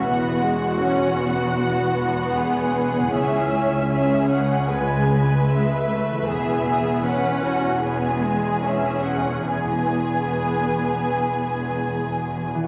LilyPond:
<<
  \new Staff \with { instrumentName = "Violin section" } { \time 4/4 \key e \major \tempo 4 = 76 fis''1 | e''4 e''8 fis''8 gis''4 e''4 | e''4 fis''4 gis''4 e''8 fis''8 | gis''2.~ gis''8. r16 | }
  \new Staff \with { instrumentName = "Violin section" } { \time 4/4 \key e \major fis'2. gis'4~ | gis'4 gis'4 b'8 b'4. | gis'8 gis'8 b'8 fis'8 gis'2 | gis'2.~ gis'8. r16 | }
  \new Staff \with { instrumentName = "Harp" } { \time 4/4 \key e \major <e b e' fis' gis'>1 | <cis b e' gis'>1 | <e b fis' gis'>1 | <e b e' gis'>1 | }
  \new Staff \with { instrumentName = "Viola section" } { \time 4/4 \key e \major b8 gis8 cis'8 b8 b2 | cis'4 cis'4 gis4 gis8 a8 | b4 cis'4 b8 gis8 cis'4 | b2.~ b8. r16 | }
  \new Staff \with { instrumentName = "Cello section" } { \clef bass \time 4/4 \key e \major e,1 | cis,1 | e,1~ | e,2.~ e,8. r16 | }
  \new Staff \with { instrumentName = "Double bass section" } { \clef bass \time 4/4 \key e \major e,,1 | cis,1 | e,,1~ | e,,2.~ e,,8. r16 | }
>>